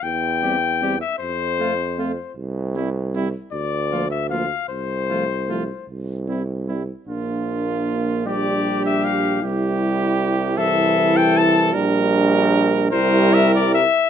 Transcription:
<<
  \new Staff \with { instrumentName = "Cornet" } { \time 6/8 \key c \mixolydian \tempo 4. = 51 g''4~ g''16 e''16 c''4. | r4. d''8. e''16 f''8 | c''4. r4. | r4. d''8. e''16 f''8 |
r4. e''8. g''16 a''8 | r4. c''8 e''16 d''16 e''8 | }
  \new Staff \with { instrumentName = "Trumpet" } { \time 6/8 \key c \mixolydian r8 g'8 g'8 r8 f'8 f'8 | r8 e'8 e'8 r8 f'8 f'8 | r8 f'8 f'8 r8 e'8 e'8 | f'4. g'4. |
g'4. a'4. | bes'4. bes'4 r8 | }
  \new Staff \with { instrumentName = "French horn" } { \time 6/8 \key c \mixolydian r8 c'8 c'8 r8 c'8 c'8 | r8 c'8 c'8 r8 bes8 bes8 | r8 a8 a8 r8 c'8 c'8 | d'4. d'4. |
e'4. e'4. | d'4. e'4 r8 | }
  \new Staff \with { instrumentName = "Euphonium" } { \clef bass \time 6/8 \key c \mixolydian r8 g8 g8 r8 a8 a8 | r8 g8 g8 r8 f8 f8 | r8 f8 f8 r8 g8 g8 | bes4. g4. |
g4. e4. | g4. g4 r8 | }
  \new Staff \with { instrumentName = "Bass trombone" } { \clef bass \time 6/8 \key c \mixolydian e,4. f,4. | c,4. d,4. | c,4. c,4. | bes,,2. |
c,2. | bes,,4. c,4 r8 | }
>>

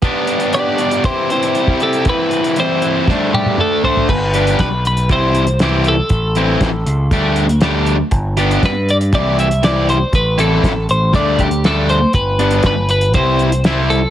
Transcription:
<<
  \new Staff \with { instrumentName = "Clean electric guitar" } { \time 4/4 \key g \major \tempo 4 = 119 r4 d''4 c''8 c''4 a'8 | b'4 c''4. g'8 a'8 c''8 | b'4 b'8 b'8 c''4. a'8~ | a'2~ a'8 r4. |
r4 b'8 d''8 d''8 e''8 d''8 c''8 | b'8 a'4 c''8 d''8 g'8 a'8 c''8 | b'4 b'8 b'8 c''4. a'8 | }
  \new Staff \with { instrumentName = "Distorted electric guitar" } { \time 4/4 \key g \major <b d' g'>4 <b d' g'>8 <d' g'>8 <e c' e' g'>8 <c' e' g'>4 <c' e' g'>8 | <e c' e'>4 <e c' e'>8 <c' e'>8 <g a d'>8 <a d'>4 <a d'>8 | r8 <g b d' g'>8 r4 <e c' e' g'>8 r8 <e c' e' g'>8 r8 | r8 <e c' e'>8 r4 <g a d' g'>8 r8 <g a d' g'>8 r8 |
r8 <b d' g'>8 r4 <e c' e' g'>8 r8 <e c' e' g'>8 r8 | r8 <e c' e'>8 r4 <g a d'>8 r8 <g a d'>8 r8 | r8 <g b d'>8 r4 <g c' e'>8 r8 <g c' e'>8 r8 | }
  \new Staff \with { instrumentName = "Picked electric bass" } { \clef bass \time 4/4 \key g \major r1 | r1 | g,,4 b,,4 c,2 | a,,4 a,,8 cis,8 d,2 |
g,,4 g,4 c,2 | a,,4 a,,8 a,,8 d,2 | g,,4 g,,4 c,2 | }
  \new DrumStaff \with { instrumentName = "Drums" } \drummode { \time 4/4 <hh bd>8 hh16 hh16 hh8 hh16 hh16 <hh bd>8 hh16 hh16 hh16 bd16 hh16 hh16 | <hh bd>8 hh16 hh16 hh8 hh8 <bd sn>8 tommh16 tommh16 toml8 tomfh16 tomfh16 | <cymc bd>8 hh16 hh16 <hh bd sn>8 hh16 hh16 <hh bd>8 hh16 hh16 <hh sn>8 hh8 | <hh bd>8 hh8 <hh bd sn>8 hh8 <hh bd>8 hh16 hh16 <hh sn>8 hh8 |
<hh bd>8 hh16 hh16 <hh bd sn>8 hh16 hh16 <hh bd>8 hh16 hh16 <hh sn>8 <hh sn>8 | <hh bd>8 hh8 <hh bd sn>8 hh8 <hh bd>8 <hh bd>16 hh16 <hh sn>8 hh8 | <hh bd>8 hh16 hh16 <hh bd sn>8 hh16 hh16 <hh bd>8 hh16 hh16 <hh sn>8 hh8 | }
>>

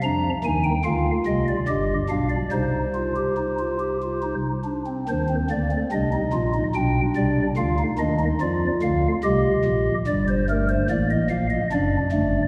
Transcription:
<<
  \new Staff \with { instrumentName = "Pipe organ" } { \time 3/4 \key c \minor \tempo 4 = 72 << { bes''8 aes''16 g''16 f''8 ees''16 d''16 ees''8 f''16 d''16 | c''2~ c''8 r8 | c''8 d''8 ees''4 g''8 d''8 | f''8 ees''8 d''8 f''8 ees''4 |
d''16 c''16 bes'16 c''16 d''16 ees''16 f''16 ees''16 d''4 | } \\ { d'8 ees'8 f'4 g'8 d'8 | ees'8 f'16 g'16 ees'16 f'16 g'16 f'16 ees'8 d'16 c'16 | d'16 c'16 bes16 c'16 d'16 ees'16 f'16 ees'16 d'4 | f'16 ees'16 d'16 ees'16 f'4 g'4 |
g8 a8 bes4 d'8 a8 | } >> }
  \new Staff \with { instrumentName = "Pipe organ" } { \clef bass \time 3/4 \key c \minor <f, f>8 <ees, ees>8 <d, d>8 <c, c>8 <g,, g,>8 <b,, b,>8 | <c, c>2~ <c, c>8 r8 | <ees, ees>8 <d, d>8 <c, c>8 <bes,, bes,>8 <b,, b,>8 <c, c>8 | <d, d>8 <ees, ees>8 <f, f>8 <d, d>8 <c, c>8 <bes,, bes,>8 |
<g,, g,>4 <a,, a,>8 <bes,, bes,>8 <fis,, fis,>8 <g,, g,>8 | }
>>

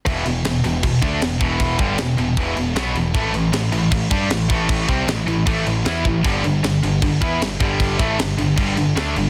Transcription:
<<
  \new Staff \with { instrumentName = "Distorted electric guitar" } { \clef bass \time 4/4 \key e \minor \tempo 4 = 155 <e, b, e>8 <e, b,>8 <e, b,>8 <e, b,>8 <e, b,>8 <d a d'>8 <e, b,>8 <e, b, e>8~ | <e, b, e>8 <g, d g>8 <e, b,>8 <e, b,>8 <e, b, e>8 <e, b,>8 <b, fis b>8 <e, b,>8 | <a, e a>8 <a, e>8 <a, e>8 <a, e>8 <a, e>8 <g d' g'>8 <a, e>8 <a, e a>8~ | <a, e a>8 <c g c'>8 <a, e>8 <a, e>8 <a, e a>8 <a, e>8 <e b e'>8 <a, e>8 |
<g, d g>8 <g, d>8 <g, d>8 <g, d>8 <g, d>8 <e b e'>8 <g, d>8 <g, d g>8~ | <g, d g>8 <a, e a>8 <g, d>8 <g, d>8 <g, d g>8 <g, d>8 <d a d'>8 <g, d>8 | }
  \new Staff \with { instrumentName = "Distorted electric guitar" } { \clef bass \time 4/4 \key e \minor <e, b, e>8 <e, b,>8 <e, b,>8 <e, b,>8 <e, b,>8 <d a d'>8 <e, b,>8 <e, b, e>8~ | <e, b, e>8 <g, d g>8 <e, b,>8 <e, b,>8 <e, b, e>8 <e, b,>8 <b, fis b>8 <e, b,>8 | <a, e a>8 <a, e>8 <a, e>8 <a, e>8 <a, e>8 <g d' g'>8 <a, e>8 <a, e a>8~ | <a, e a>8 <c g c'>8 <a, e>8 <a, e>8 <a, e a>8 <a, e>8 <e b e'>8 <a, e>8 |
<g, d g>8 <g, d>8 <g, d>8 <g, d>8 <g, d>8 <e b e'>8 <g, d>8 <g, d g>8~ | <g, d g>8 <a, e a>8 <g, d>8 <g, d>8 <g, d g>8 <g, d>8 <d a d'>8 <g, d>8 | }
  \new Staff \with { instrumentName = "Picked electric bass" } { \clef bass \time 4/4 \key e \minor e,,8 e,,8 r8 e,,8 e,,8 d,8 e,,8 e,,8~ | e,,8 g,,8 e,,8 e,,8 r8 e,,8 b,,8 e,,8 | a,,8 a,,8 a,,8 a,,8 a,,8 g,8 a,,8 a,,8~ | a,,8 c,8 a,,8 a,,8 a,,8 a,,8 e,8 a,,8 |
g,,8 g,,8 g,,8 g,,8 g,,8 e,8 g,,8 g,,8~ | g,,8 a,,8 g,,8 g,,8 g,,8 g,,8 d,8 g,,8 | }
  \new DrumStaff \with { instrumentName = "Drums" } \drummode { \time 4/4 <cymc bd>8 cymc8 <cymc sn>8 cymc8 <cymc bd>8 <cymc bd>8 <cymc sn>8 <cymc bd>8 | <cymc bd>8 <cymc bd>8 <cymc sn>8 cymc8 <cymc bd>8 cymc8 <cymc sn>8 cymc8 | <cymc bd>8 cymc8 <cymc sn>8 cymc8 <cymc bd>8 <cymc bd>8 <cymc sn>8 <cymc bd>8 | <cymc bd>8 <cymc bd>8 <cymc sn>8 cymc8 <cymc bd>8 cymc8 <cymc sn>8 bd8 |
<cymc bd>8 cymc8 <cymc sn>8 cymc8 <cymc bd>8 <cymc bd>8 <cymc sn>8 <cymc bd>8 | <cymc bd>8 <cymc bd>8 <cymc sn>8 cymc8 <cymc bd>8 cymc8 <cymc sn>8 cymc8 | }
>>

